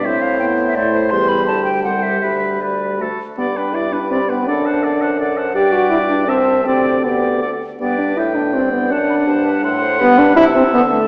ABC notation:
X:1
M:3/4
L:1/16
Q:1/4=164
K:Am
V:1 name="Flute"
e2 f2 g3 e d2 c2 | [K:G] c'2 b2 a2 g2 f2 e2 | e4 d4 z4 | b2 g2 b2 g2 b2 g2 |
f2 a2 f2 a2 f2 a2 | g8 a4 | g4 g4 f2 z2 | g4 g8 |
a2 b2 a4 c'4 | b4 a8 |]
V:2 name="Oboe"
c8 c4 | [K:G] c8 c4 | B4 B4 A2 z2 | d2 B2 d2 B2 d2 B2 |
d2 f2 d2 f2 d2 f2 | d8 e4 | d4 d4 d2 z2 | d4 g8 |
f8 f4- | f4 e8 |]
V:3 name="Clarinet"
E8 E4 | [K:G] G8 G4 | G4 G4 F2 z2 | G2 B2 G2 B2 G2 B2 |
A2 c2 A2 c2 A2 c2 | B8 c4 | G4 G4 A2 z2 | B8 d4- |
d4 c2 B2 A2 c2 | B8 A4 |]
V:4 name="French horn"
C4 B,4 A,4 | [K:G] G,8 G,4 | G,4 G,4 A,2 z2 | B,2 D2 E2 D2 C2 B,2 |
D8- D2 z2 | G2 F2 E2 D2 C4 | C4 B,4 z4 | B,2 D2 E2 D2 C2 B,2 |
D8- D2 z2 | B,2 D2 E2 C2 B,2 A,2 |]
V:5 name="Bassoon" clef=bass
A,,12 | [K:G] E,,4 D,,4 C,,4 | D,,8 D,,2 z2 | G,,12 |
F,,12 | G,,8 C,,4 | D,,8- D,,2 z2 | G,,4 A,,4 G,,4 |
F,,4 G,,4 A,,4 | G,,4 C,4 D,4 |]